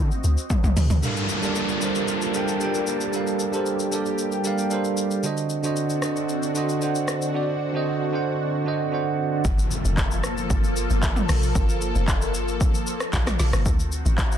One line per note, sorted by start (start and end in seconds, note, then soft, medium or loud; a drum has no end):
0.00 0.10 D3 loud
0.00 0.99 C4 medium
0.00 0.99 F#4 medium
0.00 0.99 D#5 medium
0.11 shaker medium
0.24 0.37 D2 loud
0.24 shaker loud
0.38 shaker medium
0.50 kick medium
0.50 mid tom medium
0.50 shaker medium
0.64 0.76 C2 loud
0.64 mid tom medium
0.64 shaker medium
0.77 0.89 D2 medium
0.77 floor tom loud
0.77 open hi-hat medium
0.77 shaker medium
0.90 1.02 D2 medium
0.90 floor tom loud
0.90 shaker medium
1.01 1.34 G3 medium
1.01 5.20 G3 medium
1.01 5.20 A#3 medium
1.01 1.34 D4 medium
1.01 3.11 F4 medium
1.01 1.35 A4 medium
1.01 1.35 A#4 medium
1.01 1.36 F5 medium
1.01 5.20 A5 medium
1.01 downlifter medium
1.01 shaker medium
1.16 shaker medium
1.29 shaker medium
1.41 1.73 G3 medium
1.41 1.74 D4 medium
1.41 1.74 A4 medium
1.41 1.75 A#4 medium
1.41 1.75 D5 medium
1.41 shaker medium
1.55 shaker medium
1.69 shaker medium
1.80 2.23 G3 medium
1.80 2.24 D4 medium
1.80 2.24 A4 medium
1.80 2.25 A#4 medium
1.80 2.25 C5 medium
1.80 shaker medium
1.95 shaker medium
2.08 shaker medium
2.22 shaker medium
2.33 2.55 G3 medium
2.33 2.55 D4 medium
2.33 2.56 A4 medium
2.33 2.56 A#4 medium
2.33 2.57 G5 medium
2.33 shaker medium
2.48 shaker medium
2.60 3.03 G3 medium
2.60 3.03 D4 medium
2.60 3.04 A4 medium
2.60 3.04 A#4 medium
2.60 3.04 G5 medium
2.60 shaker medium
2.74 shaker soft
2.87 shaker medium
3.01 shaker medium
3.12 3.44 G3 medium
3.12 3.45 D4 medium
3.12 5.22 G4 medium
3.12 3.45 A4 medium
3.12 3.46 A#4 medium
3.12 3.46 F5 medium
3.12 shaker medium
3.27 shaker medium
3.39 shaker medium
3.52 3.84 G3 medium
3.52 3.84 D4 medium
3.52 3.85 A4 medium
3.52 3.85 A#4 medium
3.52 3.86 C5 medium
3.52 shaker medium
3.66 shaker medium
3.79 shaker medium
3.91 4.34 G3 medium
3.91 4.34 D4 medium
3.91 4.35 A4 medium
3.91 4.35 A#4 medium
3.91 4.36 D5 medium
3.91 shaker loud
4.06 shaker medium
4.19 shaker medium
4.32 shaker medium
4.43 4.65 G3 medium
4.43 4.66 D4 medium
4.43 4.66 A4 medium
4.43 4.67 A#4 medium
4.43 4.67 F5 medium
4.43 4.58 A5 medium
4.43 shaker medium
4.58 4.70 G5 medium
4.58 shaker soft
4.70 5.13 G3 medium
4.70 5.13 D4 medium
4.70 5.14 A4 medium
4.70 5.14 A#4 medium
4.70 5.15 C5 medium
4.70 5.20 F5 medium
4.70 shaker medium
4.84 shaker medium
4.97 shaker medium
5.11 shaker medium
5.23 5.55 D3 medium
5.23 9.40 D3 medium
5.23 9.41 C4 medium
5.23 9.41 D4 medium
5.23 5.55 D4 medium
5.23 9.40 F#4 medium
5.23 5.56 F#4 medium
5.23 5.56 C5 medium
5.23 5.57 D#5 medium
5.23 shaker medium
5.37 shaker medium
5.50 shaker medium
5.62 5.94 D3 medium
5.62 5.95 D4 medium
5.62 5.95 F#4 medium
5.62 5.96 C5 medium
5.62 5.96 D#5 medium
5.62 shaker medium
5.76 shaker medium
5.90 shaker medium
6.01 6.44 D3 medium
6.01 6.45 D4 medium
6.01 6.45 F#4 medium
6.01 6.46 C5 medium
6.01 6.46 D#5 medium
6.01 cross-stick medium
6.01 shaker medium
6.16 shaker medium
6.29 shaker medium
6.43 shaker medium
6.54 6.76 D3 medium
6.54 6.76 D4 medium
6.54 6.77 F#4 medium
6.54 6.77 C5 medium
6.54 6.78 D#5 medium
6.54 shaker medium
6.69 shaker soft
6.80 7.23 D3 medium
6.80 7.24 D4 medium
6.80 7.24 F#4 medium
6.80 7.25 C5 medium
6.80 7.25 F#5 medium
6.80 shaker medium
6.95 shaker soft
7.08 cross-stick medium
7.08 shaker medium
7.22 shaker medium
7.33 7.65 D3 medium
7.33 7.66 D4 medium
7.33 7.66 F#4 medium
7.33 7.67 C5 medium
7.33 7.67 D5 medium
7.73 8.05 D3 medium
7.73 8.05 D4 medium
7.73 8.06 F#4 medium
7.73 8.06 C5 medium
7.73 8.07 D#5 medium
8.12 8.55 D3 medium
8.12 8.55 D4 medium
8.12 8.56 F#4 medium
8.12 8.56 C5 medium
8.12 8.57 F#5 medium
8.64 8.86 D3 medium
8.64 8.87 D4 medium
8.64 8.87 F#4 medium
8.64 8.88 C5 medium
8.64 8.88 D#5 medium
8.91 9.34 D3 medium
8.91 9.34 D4 medium
8.91 9.35 F#4 medium
8.91 9.35 C5 medium
8.91 9.36 F#5 medium
9.45 9.82 G1 loud
9.45 13.62 F3 medium
9.45 13.62 A#3 medium
9.45 13.62 A4 medium
9.45 kick loud
9.45 impact medium
9.45 shaker medium
9.59 shaker medium
9.71 shaker medium
9.85 10.21 F1 loud
9.85 shaker medium
9.97 kick loud
9.97 clap medium
9.97 shaker medium
10.11 shaker medium
10.24 cross-stick medium
10.24 shaker loud
10.38 shaker medium
10.50 10.87 G1 loud
10.50 kick loud
10.50 shaker medium
10.64 shaker medium
10.77 shaker loud
10.90 11.26 G1 medium
10.90 shaker medium
11.03 kick medium
11.03 clap loud
11.03 shaker medium
11.16 mid tom medium
11.16 shaker medium
11.29 11.54 A#1 medium
11.29 cross-stick medium
11.29 open hi-hat medium
11.29 shaker medium
11.43 shaker medium
11.55 11.92 G1 loud
11.55 kick loud
11.55 shaker medium
11.69 shaker medium
11.81 shaker medium
11.95 12.36 F1 medium
11.95 shaker medium
12.08 kick medium
12.08 clap medium
12.08 shaker medium
12.22 shaker medium
12.34 12.83 G1 loud
12.34 shaker loud
12.48 shaker medium
12.61 kick loud
12.61 shaker medium
12.75 shaker medium
12.87 shaker loud
13.00 cross-stick loud
13.00 shaker medium
13.13 13.38 A#1 loud
13.13 kick medium
13.13 snare medium
13.13 clap loud
13.13 shaker medium
13.27 cross-stick loud
13.27 snare medium
13.27 mid tom loud
13.27 shaker medium
13.39 13.52 A#1 medium
13.39 snare medium
13.39 open hi-hat medium
13.39 shaker medium
13.53 13.67 G1 medium
13.53 cross-stick loud
13.53 shaker medium
13.66 14.03 D2 loud
13.66 14.38 D#3 medium
13.66 14.38 C4 medium
13.66 14.38 F#4 loud
13.66 kick loud
13.66 shaker medium
13.80 shaker medium
13.92 shaker medium
14.06 14.38 A1 medium
14.06 shaker medium
14.18 kick loud
14.18 clap medium
14.18 shaker medium
14.32 shaker medium